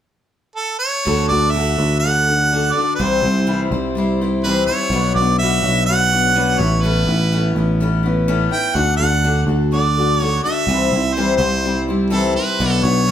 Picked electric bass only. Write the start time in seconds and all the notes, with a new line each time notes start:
1.07 D2
1.32 D2
1.79 D2
3.00 C2
3.23 C2
3.71 C2
4.90 B1
5.14 B1
5.63 B1
6.59 A1
7.07 A1
7.55 A1
8.75 D2
9.00 D2
9.47 D2
10.67 C2
10.92 C2
11.39 C2
12.60 B1
12.84 B1